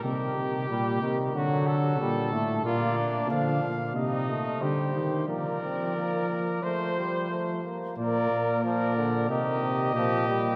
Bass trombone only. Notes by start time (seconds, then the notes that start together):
0.04 C3
0.36 C3
0.70 A#2
1.02 C3
1.34 D3
2.00 A#2
2.32 A2
2.64 A#2
3.31 D3
3.63 A#2
3.95 C3
4.61 D3
4.95 D#3
5.28 F3
6.63 F3
7.98 A#2
8.30 A#2
9.29 C3
9.95 A#2